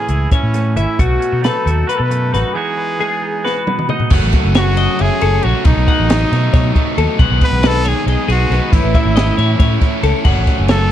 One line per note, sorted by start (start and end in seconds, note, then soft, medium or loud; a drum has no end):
0.00 0.53 A2 medium
0.00 0.99 E3 medium
0.00 0.53 C#4 medium
0.00 0.32 G#4 medium
0.08 0.26 C#2 medium
0.08 0.31 E4 medium
0.08 closed hi-hat medium
0.31 0.78 C#4 medium
0.31 0.97 E4 medium
0.31 0.77 C#5 medium
0.31 kick medium
0.31 closed hi-hat medium
0.43 0.77 A2 medium
0.54 0.96 A2 medium
0.54 0.75 C#4 medium
0.54 snare soft
0.54 closed hi-hat medium
0.76 0.85 G#1 medium
0.76 0.96 C#4 medium
0.76 1.02 E4 medium
0.76 0.99 E5 medium
0.76 closed hi-hat medium
0.98 1.16 B1 medium
0.98 2.54 B2 medium
0.98 1.41 A3 medium
0.98 1.44 F#4 medium
0.98 1.43 F#4 medium
0.98 kick loud
0.98 closed hi-hat medium
1.20 1.32 C#4 soft
1.20 closed hi-hat medium
1.32 1.49 B2 medium
1.32 1.64 D#4 soft
1.42 2.55 F#3 medium
1.42 2.09 A3 medium
1.42 1.90 A4 medium
1.42 1.67 B4 medium
1.42 snare loud
1.42 closed hi-hat medium
1.65 1.83 D#2 medium
1.65 2.31 D#4 soft
1.65 1.89 F#4 medium
1.65 closed hi-hat medium
1.87 1.98 F#4 medium
1.87 1.97 B4 medium
1.87 2.11 B4 medium
1.87 closed hi-hat medium
1.96 2.35 B2 medium
1.96 2.04 A4 medium
1.96 2.55 A4 medium
2.02 2.35 B4 medium
2.09 2.55 F#2 medium
2.09 2.55 A3 medium
2.09 2.33 A4 medium
2.09 closed hi-hat medium
2.32 2.42 A1 medium
2.32 2.53 D#4 medium
2.32 2.55 F#4 medium
2.32 2.55 B4 medium
2.32 snare soft
2.32 closed hi-hat medium
2.54 4.08 E3 medium
2.54 2.98 G#3 medium
2.54 2.99 B3 soft
2.54 3.21 D#4 medium
2.54 2.76 F#4 medium
2.54 3.66 G#4 loud
2.54 2.78 C#5 medium
2.77 3.43 F#4 medium
2.77 3.00 B4 medium
2.99 4.08 G#3 medium
2.99 3.10 A3 soft
2.99 3.45 G#4 medium
3.10 3.66 B3 medium
3.22 3.89 D#4 medium
3.45 5.65 F#4 medium
3.45 3.89 B4 medium
3.45 snare soft
3.67 4.09 B2 medium
3.67 4.09 B3 medium
3.67 high tom medium
3.79 mid tom medium
3.89 4.09 D#4 medium
3.89 4.12 D#5 medium
3.89 mid tom medium
4.00 floor tom medium
4.10 4.19 F#1 medium
4.10 4.53 F#2 medium
4.10 4.55 C#3 loud
4.10 4.56 F#3 medium
4.10 4.57 A3 loud
4.10 4.58 C#4 loud
4.10 4.55 F#5 loud
4.10 kick loud
4.10 crash loud
4.24 4.32 A1 medium
4.33 kick medium
4.33 snare soft
4.33 ride medium
4.45 4.86 F#1 medium
4.54 4.99 F#2 loud
4.54 5.00 C#3 loud
4.54 4.80 F#3 loud
4.54 4.78 A3 loud
4.54 4.76 C#4 loud
4.54 5.03 F#4 loud
4.54 4.77 C#5 medium
4.54 snare loud
4.54 ride loud
4.77 5.24 F#3 medium
4.77 5.22 A3 medium
4.77 5.20 C#4 medium
4.77 5.00 D#5 medium
4.77 ride medium
4.99 5.09 F#1 medium
4.99 5.46 G#4 loud
4.99 5.22 E5 medium
4.99 ride medium
5.21 5.38 F#1 loud
5.21 5.44 F#3 medium
5.21 5.44 A3 medium
5.21 5.45 C#4 medium
5.21 5.44 A4 medium
5.21 ride medium
5.43 5.53 A#1 medium
5.43 5.64 C#3 medium
5.43 5.65 F#3 medium
5.43 5.65 A3 medium
5.43 5.65 C#4 medium
5.43 5.67 F#4 medium
5.43 5.88 C#5 medium
5.43 ride medium
5.65 5.74 B1 medium
5.65 6.08 B2 medium
5.65 6.09 F#3 loud
5.65 6.09 A3 medium
5.65 6.97 D#4 loud
5.65 6.11 D#4 loud
5.65 kick loud
5.65 ride medium
5.77 5.85 B1 loud
5.88 6.10 F#5 medium
5.88 kick medium
5.88 ride medium
6.00 6.24 A1 medium
6.08 6.53 B2 loud
6.08 6.32 F#3 loud
6.08 6.30 A3 loud
6.08 6.29 D#4 loud
6.08 6.32 D#5 medium
6.08 snare loud
6.08 ride loud
6.30 6.48 B2 loud
6.30 6.76 F#3 medium
6.30 6.75 A3 medium
6.30 6.73 D#4 medium
6.30 6.52 C#5 medium
6.30 snare soft
6.30 ride medium
6.53 6.70 B2 loud
6.53 6.97 C#5 medium
6.53 kick loud
6.53 snare soft
6.53 ride medium
6.74 6.97 F#3 medium
6.74 6.97 A3 medium
6.74 6.98 D#4 medium
6.74 kick medium
6.74 ride medium
6.97 7.06 D#2 loud
6.97 7.17 B2 medium
6.97 7.18 F#3 medium
6.97 7.19 A3 medium
6.97 7.19 D#4 medium
6.97 7.20 A4 medium
6.97 ride medium
7.18 7.28 B1 medium
7.18 7.61 B2 loud
7.18 7.62 D#3 medium
7.18 7.63 G#3 loud
7.18 7.63 B3 loud
7.18 7.64 D#4 medium
7.18 7.63 F#5 medium
7.18 kick loud
7.18 ride medium
7.30 7.38 B1 medium
7.41 7.69 B4 loud
7.41 kick medium
7.41 snare soft
7.41 ride medium
7.51 7.93 B1 medium
7.62 8.06 B2 loud
7.62 8.07 D#3 loud
7.62 7.87 G#3 loud
7.62 7.85 B3 loud
7.62 7.83 D#4 loud
7.62 7.84 B4 loud
7.62 snare loud
7.62 ride loud
7.67 7.90 A4 loud
7.85 8.31 G#3 medium
7.85 8.29 B3 medium
7.85 8.28 D#4 medium
7.85 8.07 G#4 loud
7.85 8.07 C#5 medium
7.85 snare soft
7.85 ride medium
8.06 8.15 B1 loud
8.06 8.28 G#4 loud
8.06 8.29 D#5 medium
8.06 ride loud
8.28 8.45 B1 loud
8.28 8.52 G#3 medium
8.28 8.52 B3 medium
8.28 8.53 D#4 medium
8.28 8.74 F#4 loud
8.28 8.51 G#4 medium
8.28 ride medium
8.50 8.58 B1 medium
8.50 8.71 D#3 medium
8.50 8.73 G#3 medium
8.50 8.73 B3 medium
8.50 8.73 D#4 medium
8.50 8.95 B4 medium
8.50 snare soft
8.50 ride medium
8.72 8.81 A1 loud
8.72 9.15 A2 medium
8.72 9.16 E3 loud
8.72 9.17 A3 loud
8.72 9.18 C#4 medium
8.72 10.04 E4 medium
8.72 9.18 E4 medium
8.72 kick loud
8.72 ride loud
8.84 8.92 A1 medium
8.94 9.15 E5 medium
8.94 kick medium
8.94 ride medium
9.05 9.30 G#1 loud
9.16 9.60 A2 loud
9.16 9.60 E3 loud
9.16 9.40 A3 loud
9.16 9.39 C#4 loud
9.16 9.37 E4 loud
9.16 9.37 D#5 medium
9.16 snare loud
9.16 ride loud
9.37 9.55 A2 medium
9.37 9.83 A3 medium
9.37 9.82 C#4 medium
9.37 9.80 E4 medium
9.37 9.58 C#5 medium
9.37 ride medium
9.59 9.77 A2 loud
9.59 10.04 C#5 medium
9.59 kick loud
9.59 ride loud
9.81 10.03 A3 medium
9.81 10.03 C#4 medium
9.81 10.03 E4 medium
9.81 kick medium
9.81 snare soft
9.81 ride medium
10.02 10.12 C#2 loud
10.02 10.23 E3 medium
10.02 10.25 A3 medium
10.02 10.25 C#4 medium
10.02 10.25 E4 medium
10.02 10.26 A4 medium
10.02 ride medium
10.24 10.34 F#1 medium
10.24 10.66 F#2 medium
10.24 10.67 C#3 medium
10.24 10.69 F#3 loud
10.24 10.69 A3 loud
10.24 10.70 C#4 loud
10.24 10.69 F#5 loud
10.24 kick loud
10.24 crash loud
10.37 10.45 A1 medium
10.47 kick medium
10.47 snare soft
10.47 ride medium
10.59 10.92 F#1 medium
10.68 10.92 F#2 loud
10.68 10.92 C#3 loud
10.68 10.92 F#3 loud
10.68 10.91 A3 loud
10.68 10.88 C#4 loud
10.68 10.92 A4 loud
10.68 10.91 C#5 medium
10.68 snare loud
10.68 ride loud